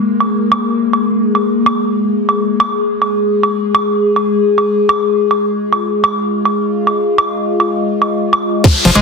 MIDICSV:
0, 0, Header, 1, 6, 480
1, 0, Start_track
1, 0, Key_signature, -4, "minor"
1, 0, Tempo, 416667
1, 355, Time_signature, 4, 2, 24, 8
1, 10386, End_track
2, 0, Start_track
2, 0, Title_t, "Synth drone"
2, 0, Program_c, 0, 95
2, 0, Note_on_c, 0, 56, 85
2, 0, Note_on_c, 0, 58, 84
2, 2275, Note_on_c, 0, 68, 84
2, 2299, Note_off_c, 0, 58, 0
2, 6115, Note_on_c, 0, 65, 83
2, 6139, Note_off_c, 0, 68, 0
2, 9955, Note_on_c, 0, 60, 84
2, 9955, Note_on_c, 0, 72, 84
2, 9964, Note_off_c, 0, 56, 0
2, 9979, Note_off_c, 0, 65, 0
2, 10386, Note_off_c, 0, 60, 0
2, 10386, Note_off_c, 0, 72, 0
2, 10386, End_track
3, 0, Start_track
3, 0, Title_t, "Acid bass"
3, 0, Program_c, 1, 38
3, 9955, Note_on_c, 1, 53, 84
3, 9993, Note_off_c, 1, 53, 0
3, 10195, Note_on_c, 1, 53, 82
3, 10259, Note_off_c, 1, 53, 0
3, 10315, Note_on_c, 1, 56, 103
3, 10386, Note_off_c, 1, 56, 0
3, 10386, End_track
4, 0, Start_track
4, 0, Title_t, "Analog synth bass"
4, 0, Program_c, 2, 38
4, 10195, Note_on_c, 2, 29, 96
4, 10274, Note_off_c, 2, 29, 0
4, 10315, Note_on_c, 2, 29, 88
4, 10386, Note_off_c, 2, 29, 0
4, 10386, End_track
5, 0, Start_track
5, 0, Title_t, "Downlifter"
5, 0, Program_c, 3, 103
5, 9955, Note_on_c, 3, 60, 78
5, 10386, Note_off_c, 3, 60, 0
5, 10386, End_track
6, 0, Start_track
6, 0, Title_t, "Drums"
6, 235, Note_on_c, 9, 76, 36
6, 350, Note_off_c, 9, 76, 0
6, 595, Note_on_c, 9, 76, 74
6, 710, Note_off_c, 9, 76, 0
6, 1075, Note_on_c, 9, 76, 38
6, 1190, Note_off_c, 9, 76, 0
6, 1555, Note_on_c, 9, 76, 36
6, 1670, Note_off_c, 9, 76, 0
6, 1915, Note_on_c, 9, 76, 71
6, 2030, Note_off_c, 9, 76, 0
6, 2635, Note_on_c, 9, 76, 39
6, 2750, Note_off_c, 9, 76, 0
6, 2995, Note_on_c, 9, 76, 79
6, 3111, Note_off_c, 9, 76, 0
6, 3475, Note_on_c, 9, 76, 37
6, 3590, Note_off_c, 9, 76, 0
6, 3955, Note_on_c, 9, 76, 39
6, 4070, Note_off_c, 9, 76, 0
6, 4315, Note_on_c, 9, 76, 82
6, 4430, Note_off_c, 9, 76, 0
6, 4795, Note_on_c, 9, 76, 38
6, 4910, Note_off_c, 9, 76, 0
6, 5275, Note_on_c, 9, 76, 39
6, 5390, Note_off_c, 9, 76, 0
6, 5635, Note_on_c, 9, 76, 81
6, 5750, Note_off_c, 9, 76, 0
6, 6115, Note_on_c, 9, 76, 42
6, 6230, Note_off_c, 9, 76, 0
6, 6595, Note_on_c, 9, 76, 43
6, 6710, Note_off_c, 9, 76, 0
6, 6955, Note_on_c, 9, 76, 80
6, 7070, Note_off_c, 9, 76, 0
6, 7435, Note_on_c, 9, 76, 41
6, 7550, Note_off_c, 9, 76, 0
6, 7915, Note_on_c, 9, 76, 40
6, 8030, Note_off_c, 9, 76, 0
6, 8275, Note_on_c, 9, 76, 81
6, 8390, Note_off_c, 9, 76, 0
6, 8755, Note_on_c, 9, 76, 43
6, 8870, Note_off_c, 9, 76, 0
6, 9235, Note_on_c, 9, 76, 41
6, 9350, Note_off_c, 9, 76, 0
6, 9595, Note_on_c, 9, 76, 80
6, 9710, Note_off_c, 9, 76, 0
6, 9955, Note_on_c, 9, 36, 119
6, 9955, Note_on_c, 9, 42, 72
6, 9955, Note_on_c, 9, 49, 107
6, 10070, Note_off_c, 9, 36, 0
6, 10070, Note_off_c, 9, 42, 0
6, 10070, Note_off_c, 9, 49, 0
6, 10195, Note_on_c, 9, 46, 105
6, 10310, Note_off_c, 9, 46, 0
6, 10315, Note_on_c, 9, 42, 68
6, 10315, Note_on_c, 9, 76, 40
6, 10386, Note_off_c, 9, 42, 0
6, 10386, Note_off_c, 9, 76, 0
6, 10386, End_track
0, 0, End_of_file